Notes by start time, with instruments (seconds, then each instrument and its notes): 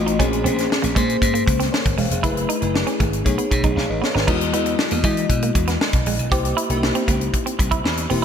Already playing: slap bass A1, fm electric piano A3 F4 F#4 D#5
0.06 clean electric guitar D#4, closed hi-hat
0.19 slap bass A#1, fm electric piano A#3 C#4 G#4 C5, clean electric guitar C#4, kick, closed hi-hat
0.33 closed hi-hat
0.44 slap bass A#1, fm electric piano A#3 C#4 G#4 C5, clean electric guitar C4, closed hi-hat
0.57 muted clean electric guitar stroke, snare, closed hi-hat
0.70 muted clean electric guitar stroke, snare
0.82 slap bass A#1, clean electric guitar A#3, closed hi-hat
0.95 slap bass A#2, clean electric guitar G#3, fm electric piano A#3 C#4 G#4 C5, kick, closed hi-hat
1.09 closed hi-hat
1.22 slap bass G#2, kick, closed hi-hat
1.34 clean electric guitar A#3, closed hi-hat
1.46 slap bass C#2, muted clean electric guitar stroke, kick, closed hi-hat
1.60 clean electric guitar C4, snare, closed hi-hat
1.72 fm electric piano A#4 C#5, snare
1.86 slap bass G#1, kick, closed hi-hat
1.98 slap bass E1, clean electric guitar G#3, fm electric piano C#5 F5, open hi-hat
2.11 slap bass F1, fm electric piano G#4 C5, closed hi-hat
2.23 slap bass F#1, fm electric piano A3 E4 G#4 B4, clean electric guitar E4, kick, closed hi-hat
2.37 closed hi-hat
2.49 clean electric guitar D#4, closed hi-hat
2.61 slap bass F#1, fm electric piano A3 E4 G#4 B4, muted clean electric guitar stroke, closed hi-hat
2.74 muted clean electric guitar stroke, snare
2.87 clean electric guitar C#4, closed hi-hat
3.00 slap bass G#1, clean electric guitar A3, kick, closed hi-hat
3.13 closed hi-hat
3.24 slap bass B1, fm electric piano A3 D#4 G#4 C#5, kick, closed hi-hat
3.38 clean electric guitar B3, closed hi-hat
3.51 slap bass B2, muted clean electric guitar stroke, kick, closed hi-hat
3.63 slap bass B1, clean electric guitar D#4, kick, closed hi-hat
3.76 slap bass B1, fm electric piano C#5 F5, muted clean electric guitar stroke, snare
3.89 slap bass A1, fm electric piano B4 D#5
4.02 clean electric guitar B3, fm electric piano A4 C#5, snare
4.15 slap bass G#1, clean electric guitar D#4, fm electric piano G#4 B4, snare
4.27 slap bass E2, fm electric piano G#3 E4 F#4 D#5, clean electric guitar D#4, kick, crash
4.41 closed hi-hat
4.53 slap bass E2, fm electric piano G#3 E4 F#4 D#5, clean electric guitar B3, closed hi-hat
4.66 muted clean electric guitar stroke, closed hi-hat
4.79 muted clean electric guitar stroke, snare
4.91 slap bass E2, clean electric guitar A#3, closed hi-hat
5.03 slap bass E3, fm electric piano G#3 E4 F#4 D#5, clean electric guitar G#3, kick, closed hi-hat
5.17 closed hi-hat
5.29 slap bass B2, kick, closed hi-hat
5.42 clean electric guitar A#3, closed hi-hat
5.55 slap bass E2, muted clean electric guitar stroke, kick, closed hi-hat
5.67 clean electric guitar B3, snare, closed hi-hat
5.81 snare
5.93 slap bass B1, kick, closed hi-hat
6.06 slap bass A#1, clean electric guitar G#3, open hi-hat
6.19 slap bass B1, closed hi-hat
6.31 slap bass C2, fm electric piano A#3 E4 G4 C5, clean electric guitar G4, kick, closed hi-hat
6.45 closed hi-hat
6.57 clean electric guitar E4, closed hi-hat
6.69 slap bass C2, fm electric piano A#3 D#4 G4 C5, muted clean electric guitar stroke, closed hi-hat
6.76 fm electric piano E4
6.83 muted clean electric guitar stroke, snare
6.95 clean electric guitar C4, closed hi-hat
7.08 slap bass C#2, clean electric guitar A#3, kick, closed hi-hat
7.21 closed hi-hat
7.34 kick, closed hi-hat
7.46 clean electric guitar C4, closed hi-hat
7.59 slap bass C2, muted clean electric guitar stroke, kick, closed hi-hat
7.71 clean electric guitar E4, kick, closed hi-hat
7.84 slap bass E2, muted clean electric guitar stroke, snare
7.97 closed hi-hat
8.10 slap bass E1, fm electric piano A#3 E4 G4 C5, clean electric guitar C4, open hi-hat